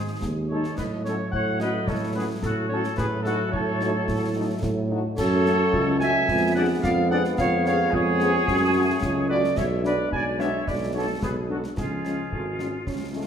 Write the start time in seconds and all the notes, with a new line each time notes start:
Already playing: G#2 D#3 G#3 G#4 C5
0.22 D#2, concert bass drum, snare
0.48 G#3 D#4 A4 C#5
0.64 snare
0.76 A2 F#3 A3 B4 D#5, concert bass drum, snare, crash
1.04 F#3 C#4 F#4 A4 C#5, snare
1.31 A2 C#5 F#5, concert bass drum
1.60 F#3 C#4 F#4 B4 D#5, snare
1.87 A2 A4 C#5, concert bass drum, snare
2.15 F#3 C#4 F#4 G#4 B4
2.41 A2 F#4 A4, concert bass drum, snare
2.68 F#3 C#4 F#4 A4 C#5
2.84 snare
2.96 A2 F#3 A3 G#4 B4, concert bass drum, snare
3.23 A3 D#4 F#4 A4, snare
3.51 A2 A4 C#5, concert bass drum
3.80 A3 D#4 F#4, snare
4.08 A2, concert bass drum, snare
4.36 A3 D#4 F#4
4.62 A2, concert bass drum, snare
4.91 A3 D#4 F#4
5.17 F#2 F#3 A3 A4 C#5, concert bass drum, snare, crash
5.46 A3 C#4 F#4, snare
5.73 C#2, concert bass drum
6.00 A3 C#4 F#4 E5 G#5, snare
6.28 F2 G#3 B3, concert bass drum, snare
6.55 B3 D4 G#4 D5 F#5
6.82 F2 D5 F5, concert bass drum, snare
7.11 B3 D4 G#4 D5 F#5
7.25 snare
7.38 F2 C#5 F5, concert bass drum, snare
7.65 B3 C#4 G#4 C#5 F5, snare
7.92 F2 G#4 C#5, concert bass drum
8.20 B3 C#4 G#4, snare
8.48 F#2 F#3 A3, concert bass drum, snare
8.75 A3 C#4 F#4
9.02 C#2, concert bass drum, snare
9.27 A3 C#4 F#4 B4 D5
9.44 snare
9.56 B1 G#3 C#5 E5, concert bass drum, snare, crash
9.83 G#3 B3 D4 B4 D5, snare
10.12 B1 D5 G#5, concert bass drum
10.38 G#3 B3 D4 C#5 E5, snare
10.67 B1 B4 D5, concert bass drum, snare
10.94 G#3 B3 D4 A4 C#5
11.22 B1 G#4 B4, concert bass drum, snare
11.49 G#3 B3 D4 F#4 A4
11.64 snare
11.77 C#2 F3 G#3 F4 G#4, concert bass drum, snare
12.05 F3 G#3 C#4, snare
12.31 G#1 A3, concert bass drum
12.57 F3 G#3 C#4, snare
12.87 C#2 C#4, concert bass drum, snare
13.14 F3 G#3 A3 C#4